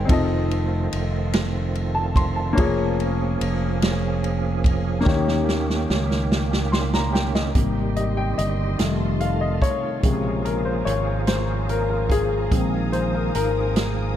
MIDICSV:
0, 0, Header, 1, 6, 480
1, 0, Start_track
1, 0, Tempo, 828729
1, 52, Time_signature, 6, 3, 24, 8
1, 8206, End_track
2, 0, Start_track
2, 0, Title_t, "String section"
2, 0, Program_c, 0, 48
2, 4371, Note_on_c, 0, 79, 58
2, 4372, Note_on_c, 0, 75, 63
2, 4376, Note_on_c, 0, 84, 66
2, 5083, Note_off_c, 0, 79, 0
2, 5084, Note_on_c, 0, 77, 58
2, 5084, Note_on_c, 0, 81, 58
2, 5796, Note_off_c, 0, 75, 0
2, 5798, Note_off_c, 0, 84, 0
2, 5800, Note_off_c, 0, 81, 0
2, 5807, Note_on_c, 0, 80, 61
2, 5808, Note_on_c, 0, 82, 63
2, 7248, Note_on_c, 0, 87, 82
2, 8206, Note_off_c, 0, 77, 0
2, 8206, Note_off_c, 0, 80, 0
2, 8206, Note_off_c, 0, 82, 0
2, 8206, Note_off_c, 0, 87, 0
2, 8206, End_track
3, 0, Start_track
3, 0, Title_t, "Grand piano"
3, 0, Program_c, 1, 0
3, 0, Control_c, 1, 64, 127
3, 0, Note_on_c, 1, 79, 56
3, 0, Note_on_c, 1, 80, 69
3, 0, Note_on_c, 1, 84, 63
3, 31, Note_on_c, 1, 60, 86
3, 41, Note_on_c, 1, 63, 71
3, 55, Note_on_c, 1, 65, 69
3, 60, Control_c, 1, 64, 0
3, 64, Note_off_c, 1, 80, 0
3, 64, Note_off_c, 1, 84, 0
3, 65, Note_on_c, 1, 69, 67
3, 77, Note_on_c, 1, 75, 96
3, 144, Control_c, 1, 64, 127
3, 159, Note_off_c, 1, 79, 0
3, 1128, Note_on_c, 1, 81, 75
3, 1243, Note_off_c, 1, 81, 0
3, 1252, Note_on_c, 1, 84, 73
3, 1365, Note_off_c, 1, 84, 0
3, 1367, Note_on_c, 1, 81, 65
3, 1457, Note_off_c, 1, 60, 0
3, 1462, Note_off_c, 1, 63, 0
3, 1465, Note_on_c, 1, 58, 85
3, 1470, Note_off_c, 1, 65, 0
3, 1474, Note_off_c, 1, 69, 0
3, 1476, Note_on_c, 1, 61, 73
3, 1480, Note_off_c, 1, 75, 0
3, 1486, Note_on_c, 1, 65, 77
3, 1498, Control_c, 1, 64, 0
3, 1498, Note_on_c, 1, 68, 83
3, 1510, Note_on_c, 1, 73, 84
3, 1592, Control_c, 1, 64, 127
3, 1597, Note_off_c, 1, 81, 0
3, 2891, Note_off_c, 1, 58, 0
3, 2899, Note_on_c, 1, 58, 75
3, 2900, Note_off_c, 1, 61, 0
3, 2904, Note_off_c, 1, 65, 0
3, 2910, Note_off_c, 1, 68, 0
3, 2911, Note_on_c, 1, 61, 73
3, 2917, Note_off_c, 1, 73, 0
3, 2924, Note_on_c, 1, 63, 68
3, 2926, Note_on_c, 1, 51, 77
3, 2935, Note_on_c, 1, 67, 77
3, 2938, Control_c, 1, 64, 0
3, 2946, Note_on_c, 1, 73, 78
3, 3023, Control_c, 1, 64, 127
3, 3625, Note_off_c, 1, 51, 0
3, 3893, Note_on_c, 1, 84, 64
3, 4005, Note_off_c, 1, 84, 0
3, 4018, Note_on_c, 1, 82, 72
3, 4128, Note_off_c, 1, 82, 0
3, 4131, Note_on_c, 1, 79, 68
3, 4244, Note_off_c, 1, 79, 0
3, 4256, Note_on_c, 1, 75, 64
3, 4331, Note_off_c, 1, 58, 0
3, 4337, Note_off_c, 1, 61, 0
3, 4344, Note_off_c, 1, 63, 0
3, 4349, Note_off_c, 1, 67, 0
3, 4355, Note_off_c, 1, 73, 0
3, 4372, Note_on_c, 1, 48, 44
3, 4374, Note_on_c, 1, 55, 45
3, 4377, Control_c, 1, 64, 0
3, 4379, Note_on_c, 1, 58, 52
3, 4481, Note_off_c, 1, 75, 0
3, 4489, Control_c, 1, 64, 127
3, 4613, Note_on_c, 1, 75, 85
3, 4733, Note_on_c, 1, 79, 85
3, 4735, Note_off_c, 1, 75, 0
3, 4853, Note_on_c, 1, 75, 94
3, 4855, Note_off_c, 1, 79, 0
3, 5068, Note_off_c, 1, 48, 0
3, 5069, Note_off_c, 1, 55, 0
3, 5071, Note_off_c, 1, 58, 0
3, 5090, Note_on_c, 1, 51, 42
3, 5095, Note_on_c, 1, 55, 45
3, 5098, Control_c, 1, 64, 0
3, 5098, Note_on_c, 1, 57, 52
3, 5201, Control_c, 1, 64, 127
3, 5331, Note_on_c, 1, 77, 81
3, 5346, Note_off_c, 1, 75, 0
3, 5450, Note_on_c, 1, 75, 78
3, 5454, Note_off_c, 1, 77, 0
3, 5573, Note_on_c, 1, 73, 94
3, 5574, Note_off_c, 1, 75, 0
3, 5786, Note_off_c, 1, 51, 0
3, 5789, Note_off_c, 1, 55, 0
3, 5791, Note_off_c, 1, 57, 0
3, 5807, Note_on_c, 1, 49, 45
3, 5810, Note_on_c, 1, 56, 49
3, 5818, Control_c, 1, 64, 0
3, 5818, Note_on_c, 1, 48, 57
3, 5904, Control_c, 1, 64, 127
3, 6053, Note_on_c, 1, 70, 74
3, 6066, Note_off_c, 1, 73, 0
3, 6128, Note_off_c, 1, 49, 0
3, 6129, Note_off_c, 1, 56, 0
3, 6133, Note_off_c, 1, 48, 0
3, 6169, Note_on_c, 1, 72, 72
3, 6175, Note_off_c, 1, 70, 0
3, 6286, Note_on_c, 1, 73, 88
3, 6293, Note_off_c, 1, 72, 0
3, 6528, Note_on_c, 1, 72, 74
3, 6535, Note_off_c, 1, 73, 0
3, 6774, Note_on_c, 1, 70, 83
3, 6776, Note_off_c, 1, 72, 0
3, 6884, Note_off_c, 1, 70, 0
3, 6892, Note_on_c, 1, 70, 74
3, 7014, Note_off_c, 1, 70, 0
3, 7018, Note_on_c, 1, 68, 93
3, 7249, Note_on_c, 1, 51, 54
3, 7249, Note_on_c, 1, 56, 47
3, 7253, Note_on_c, 1, 60, 55
3, 7257, Control_c, 1, 64, 0
3, 7366, Control_c, 1, 64, 127
3, 7485, Note_on_c, 1, 72, 81
3, 7507, Note_off_c, 1, 68, 0
3, 7568, Note_off_c, 1, 51, 0
3, 7568, Note_off_c, 1, 56, 0
3, 7570, Note_off_c, 1, 60, 0
3, 7611, Note_off_c, 1, 72, 0
3, 7614, Note_on_c, 1, 70, 62
3, 7723, Note_off_c, 1, 70, 0
3, 7735, Note_on_c, 1, 70, 89
3, 8206, Note_off_c, 1, 70, 0
3, 8206, End_track
4, 0, Start_track
4, 0, Title_t, "Tonewheel organ"
4, 0, Program_c, 2, 16
4, 0, Note_on_c, 2, 51, 57
4, 0, Note_on_c, 2, 60, 59
4, 57, Note_on_c, 2, 65, 60
4, 58, Note_on_c, 2, 57, 51
4, 1476, Note_off_c, 2, 51, 0
4, 1479, Note_off_c, 2, 60, 0
4, 1479, Note_off_c, 2, 65, 0
4, 1480, Note_off_c, 2, 57, 0
4, 1499, Note_on_c, 2, 61, 58
4, 1499, Note_on_c, 2, 68, 76
4, 1500, Note_on_c, 2, 58, 65
4, 1503, Note_on_c, 2, 53, 56
4, 2920, Note_off_c, 2, 61, 0
4, 2920, Note_off_c, 2, 68, 0
4, 2922, Note_off_c, 2, 53, 0
4, 2931, Note_on_c, 2, 61, 63
4, 2935, Note_on_c, 2, 67, 73
4, 2936, Note_on_c, 2, 51, 59
4, 4352, Note_off_c, 2, 58, 0
4, 4356, Note_off_c, 2, 61, 0
4, 4358, Note_off_c, 2, 51, 0
4, 4358, Note_off_c, 2, 67, 0
4, 4377, Note_on_c, 2, 48, 46
4, 4381, Note_on_c, 2, 51, 54
4, 4382, Note_on_c, 2, 55, 45
4, 4383, Note_on_c, 2, 67, 57
4, 5087, Note_on_c, 2, 65, 62
4, 5089, Note_off_c, 2, 55, 0
4, 5089, Note_off_c, 2, 67, 0
4, 5089, Note_on_c, 2, 57, 49
4, 5799, Note_off_c, 2, 48, 0
4, 5801, Note_off_c, 2, 51, 0
4, 5801, Note_off_c, 2, 65, 0
4, 5802, Note_off_c, 2, 57, 0
4, 5819, Note_on_c, 2, 58, 53
4, 5823, Note_on_c, 2, 65, 48
4, 5824, Note_on_c, 2, 53, 54
4, 5824, Note_on_c, 2, 68, 62
4, 7242, Note_off_c, 2, 65, 0
4, 7245, Note_on_c, 2, 51, 58
4, 8206, Note_off_c, 2, 51, 0
4, 8206, Note_off_c, 2, 53, 0
4, 8206, Note_off_c, 2, 58, 0
4, 8206, Note_off_c, 2, 68, 0
4, 8206, End_track
5, 0, Start_track
5, 0, Title_t, "Fingered electric bass"
5, 0, Program_c, 3, 33
5, 55, Note_on_c, 3, 29, 101
5, 510, Note_off_c, 3, 29, 0
5, 540, Note_on_c, 3, 29, 68
5, 1472, Note_off_c, 3, 29, 0
5, 1495, Note_on_c, 3, 29, 104
5, 1949, Note_off_c, 3, 29, 0
5, 1975, Note_on_c, 3, 29, 82
5, 2909, Note_off_c, 3, 29, 0
5, 2933, Note_on_c, 3, 39, 97
5, 3388, Note_off_c, 3, 39, 0
5, 3419, Note_on_c, 3, 37, 92
5, 4351, Note_off_c, 3, 37, 0
5, 4374, Note_on_c, 3, 32, 85
5, 4829, Note_off_c, 3, 32, 0
5, 4859, Note_on_c, 3, 31, 78
5, 5076, Note_off_c, 3, 31, 0
5, 5096, Note_on_c, 3, 29, 84
5, 5550, Note_off_c, 3, 29, 0
5, 5816, Note_on_c, 3, 34, 81
5, 6269, Note_off_c, 3, 34, 0
5, 6292, Note_on_c, 3, 32, 73
5, 7227, Note_off_c, 3, 32, 0
5, 7250, Note_on_c, 3, 34, 95
5, 7706, Note_off_c, 3, 34, 0
5, 7733, Note_on_c, 3, 32, 73
5, 8206, Note_off_c, 3, 32, 0
5, 8206, End_track
6, 0, Start_track
6, 0, Title_t, "Drums"
6, 54, Note_on_c, 9, 36, 115
6, 54, Note_on_c, 9, 53, 74
6, 111, Note_off_c, 9, 36, 0
6, 112, Note_off_c, 9, 53, 0
6, 297, Note_on_c, 9, 53, 51
6, 355, Note_off_c, 9, 53, 0
6, 536, Note_on_c, 9, 53, 70
6, 594, Note_off_c, 9, 53, 0
6, 773, Note_on_c, 9, 53, 75
6, 777, Note_on_c, 9, 38, 125
6, 831, Note_off_c, 9, 53, 0
6, 835, Note_off_c, 9, 38, 0
6, 1016, Note_on_c, 9, 53, 45
6, 1074, Note_off_c, 9, 53, 0
6, 1249, Note_on_c, 9, 36, 94
6, 1256, Note_on_c, 9, 53, 60
6, 1307, Note_off_c, 9, 36, 0
6, 1313, Note_off_c, 9, 53, 0
6, 1492, Note_on_c, 9, 36, 105
6, 1493, Note_on_c, 9, 53, 74
6, 1550, Note_off_c, 9, 36, 0
6, 1551, Note_off_c, 9, 53, 0
6, 1737, Note_on_c, 9, 53, 48
6, 1795, Note_off_c, 9, 53, 0
6, 1976, Note_on_c, 9, 53, 70
6, 2034, Note_off_c, 9, 53, 0
6, 2214, Note_on_c, 9, 53, 68
6, 2218, Note_on_c, 9, 38, 102
6, 2272, Note_off_c, 9, 53, 0
6, 2276, Note_off_c, 9, 38, 0
6, 2456, Note_on_c, 9, 53, 51
6, 2514, Note_off_c, 9, 53, 0
6, 2690, Note_on_c, 9, 36, 94
6, 2698, Note_on_c, 9, 53, 58
6, 2747, Note_off_c, 9, 36, 0
6, 2756, Note_off_c, 9, 53, 0
6, 2933, Note_on_c, 9, 36, 117
6, 2940, Note_on_c, 9, 38, 60
6, 2991, Note_off_c, 9, 36, 0
6, 2998, Note_off_c, 9, 38, 0
6, 3059, Note_on_c, 9, 38, 54
6, 3117, Note_off_c, 9, 38, 0
6, 3178, Note_on_c, 9, 38, 72
6, 3236, Note_off_c, 9, 38, 0
6, 3301, Note_on_c, 9, 38, 62
6, 3358, Note_off_c, 9, 38, 0
6, 3418, Note_on_c, 9, 38, 86
6, 3476, Note_off_c, 9, 38, 0
6, 3538, Note_on_c, 9, 38, 53
6, 3596, Note_off_c, 9, 38, 0
6, 3659, Note_on_c, 9, 38, 86
6, 3717, Note_off_c, 9, 38, 0
6, 3783, Note_on_c, 9, 38, 86
6, 3841, Note_off_c, 9, 38, 0
6, 3899, Note_on_c, 9, 38, 100
6, 3957, Note_off_c, 9, 38, 0
6, 4016, Note_on_c, 9, 38, 89
6, 4074, Note_off_c, 9, 38, 0
6, 4141, Note_on_c, 9, 38, 93
6, 4199, Note_off_c, 9, 38, 0
6, 4258, Note_on_c, 9, 38, 93
6, 4316, Note_off_c, 9, 38, 0
6, 4373, Note_on_c, 9, 42, 81
6, 4374, Note_on_c, 9, 36, 98
6, 4431, Note_off_c, 9, 42, 0
6, 4432, Note_off_c, 9, 36, 0
6, 4613, Note_on_c, 9, 42, 48
6, 4671, Note_off_c, 9, 42, 0
6, 4857, Note_on_c, 9, 42, 68
6, 4915, Note_off_c, 9, 42, 0
6, 5091, Note_on_c, 9, 42, 76
6, 5095, Note_on_c, 9, 38, 100
6, 5149, Note_off_c, 9, 42, 0
6, 5153, Note_off_c, 9, 38, 0
6, 5332, Note_on_c, 9, 42, 51
6, 5390, Note_off_c, 9, 42, 0
6, 5570, Note_on_c, 9, 36, 77
6, 5580, Note_on_c, 9, 42, 63
6, 5628, Note_off_c, 9, 36, 0
6, 5638, Note_off_c, 9, 42, 0
6, 5811, Note_on_c, 9, 42, 81
6, 5812, Note_on_c, 9, 36, 92
6, 5869, Note_off_c, 9, 42, 0
6, 5870, Note_off_c, 9, 36, 0
6, 6055, Note_on_c, 9, 42, 51
6, 6113, Note_off_c, 9, 42, 0
6, 6296, Note_on_c, 9, 42, 73
6, 6354, Note_off_c, 9, 42, 0
6, 6528, Note_on_c, 9, 42, 74
6, 6532, Note_on_c, 9, 38, 96
6, 6586, Note_off_c, 9, 42, 0
6, 6590, Note_off_c, 9, 38, 0
6, 6772, Note_on_c, 9, 42, 50
6, 6830, Note_off_c, 9, 42, 0
6, 7006, Note_on_c, 9, 36, 74
6, 7015, Note_on_c, 9, 42, 65
6, 7064, Note_off_c, 9, 36, 0
6, 7073, Note_off_c, 9, 42, 0
6, 7249, Note_on_c, 9, 36, 93
6, 7250, Note_on_c, 9, 42, 78
6, 7307, Note_off_c, 9, 36, 0
6, 7308, Note_off_c, 9, 42, 0
6, 7490, Note_on_c, 9, 42, 50
6, 7548, Note_off_c, 9, 42, 0
6, 7731, Note_on_c, 9, 42, 72
6, 7788, Note_off_c, 9, 42, 0
6, 7969, Note_on_c, 9, 42, 78
6, 7974, Note_on_c, 9, 38, 98
6, 8027, Note_off_c, 9, 42, 0
6, 8032, Note_off_c, 9, 38, 0
6, 8206, End_track
0, 0, End_of_file